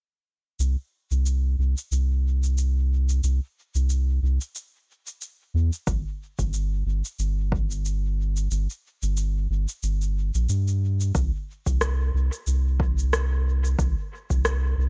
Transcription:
0.59 sub bass C2, cabasa
1.11 sub bass C2, cabasa
1.26 cabasa
1.58 sub bass C2
1.78 cabasa
1.91 sub bass C2, cabasa
2.43 cabasa
2.58 cabasa
3.09 cabasa
3.23 sub bass C2, cabasa
3.75 sub bass C2, cabasa
3.90 cabasa
4.22 sub bass C2
4.41 cabasa
4.55 cabasa
5.07 cabasa
5.21 cabasa
5.54 sub bass E2
5.73 cabasa
5.87 sub bass G1, kick, cabasa
6.39 sub bass G1, kick, cabasa
6.53 cabasa
6.86 sub bass G1
7.05 cabasa
7.19 sub bass G1, cabasa
7.52 kick
7.71 cabasa
7.85 cabasa
8.37 cabasa
8.51 sub bass G1, cabasa
8.70 cabasa
9.02 sub bass G1, cabasa
9.17 cabasa
9.50 sub bass G1
9.69 cabasa
9.83 sub bass G1, cabasa
10.01 cabasa
10.34 sub bass A#1, cabasa
10.49 sub bass G2, cabasa
10.68 cabasa
11.01 cabasa
11.15 sub bass C2, kick, cabasa
11.66 sub bass C2, kick, cabasa
11.81 cross-stick, cabasa
12.14 sub bass C2
12.33 cabasa
12.47 sub bass C2, cabasa
12.80 kick
12.99 cabasa
13.13 cross-stick, cabasa
13.65 cabasa
13.79 sub bass C2, kick, cabasa
14.30 sub bass C2, kick, cabasa
14.45 cross-stick, cabasa
14.77 sub bass C2

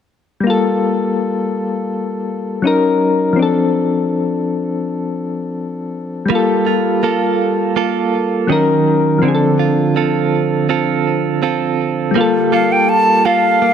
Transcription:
0.40 synth keys G3 A#3
0.47 synth keys F4 A4
2.62 synth keys F#3 C#4 D#4
2.67 synth keys A#4
3.33 synth keys F3 C4
3.39 synth keys D4 A4
6.25 synth keys G3 A#3
6.30 clean electric guitar G3, synth keys F4
6.35 synth keys A4
6.66 clean electric guitar F4
7.03 clean electric guitar A#3 F4 A4
7.76 clean electric guitar A#3 F4 A4
8.47 clean electric guitar D#3, synth keys F#3 C#4 D#4
8.52 synth keys A#4
9.18 synth keys F3 C4
9.23 clean electric guitar D3, synth keys D4
9.28 synth keys G#4
9.35 synth keys A4
9.59 clean electric guitar F4
9.96 clean electric guitar C4 F4 A4
10.69 clean electric guitar C4 F4 A4
11.42 clean electric guitar C4 F4 A4
12.11 synth keys G3 A#3
12.15 clean electric guitar G3, synth keys F4
12.21 synth keys A4
12.52 clean electric guitar A#3 F4 A4, flute F5
12.72 flute G5
12.89 flute A5
13.25 clean electric guitar A#3 F4 A4, flute F5
13.62 clean electric guitar A#3

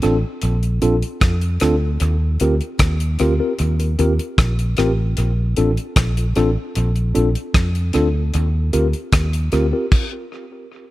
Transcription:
0.02 fingered electric bass A1, tine electric piano C4 D4 F4 A4, closed hi-hat
0.42 fingered electric bass A#1, closed hi-hat
0.63 closed hi-hat
0.82 fingered electric bass A#1, tine electric piano C4 D4 F4 A4, closed hi-hat
1.02 closed hi-hat
1.21 fingered electric bass F2, kick, cross-stick, closed hi-hat
1.41 closed hi-hat
1.60 fingered electric bass D2, tine electric piano C4 D4 F4 A4, cross-stick, closed hi-hat
1.82 tine electric piano F4 A4
2.00 fingered electric bass D#2, closed hi-hat
2.40 fingered electric bass D2, tine electric piano C4 F4 G4 A#4, closed hi-hat
2.61 closed hi-hat
2.79 fingered electric bass D#2, kick, cross-stick, closed hi-hat
3.00 closed hi-hat
3.19 fingered electric bass D2, tine electric piano C4 F4 G4 A#4, closed hi-hat
3.39 tine electric piano C4 F4 G4 A#4
3.59 fingered electric bass D#2, closed hi-hat
3.79 tine electric piano G4 A#4, closed hi-hat
3.99 fingered electric bass D#2, tine electric piano C4 F4 G4 A#4, closed hi-hat
4.19 closed hi-hat
4.38 fingered electric bass A#1, kick, cross-stick, closed hi-hat
4.59 closed hi-hat
4.77 fingered electric bass A1, tine electric piano C4 F4 G4 A#4, cross-stick, closed hi-hat
5.17 fingered electric bass A#1, closed hi-hat
5.57 fingered electric bass A1, tine electric piano C4 D4 F4 A4, closed hi-hat
5.77 closed hi-hat
5.96 fingered electric bass A#1, kick, cross-stick, closed hi-hat
6.17 tine electric piano F4 A4, closed hi-hat
6.36 fingered electric bass A1, tine electric piano C4 D4 F4 A4, closed hi-hat
6.75 fingered electric bass A#1, closed hi-hat
6.96 closed hi-hat
7.15 fingered electric bass A#1, tine electric piano C4 D4 F4 A4, closed hi-hat
7.35 closed hi-hat
7.54 fingered electric bass F2, kick, cross-stick, closed hi-hat
7.75 closed hi-hat
7.93 fingered electric bass D2, tine electric piano C4 D4 F4 A4, closed hi-hat
8.15 tine electric piano F4 A4
8.34 fingered electric bass D#2, closed hi-hat
8.73 fingered electric bass D2, tine electric piano C4 F4 G4 A#4, closed hi-hat
8.93 closed hi-hat
9.12 fingered electric bass D#2, kick, cross-stick, closed hi-hat
9.33 closed hi-hat
9.52 fingered electric bass D2, tine electric piano C4 F4 G4 A#4, closed hi-hat
9.72 tine electric piano C4 F4 G4 A#4
9.92 kick, crash

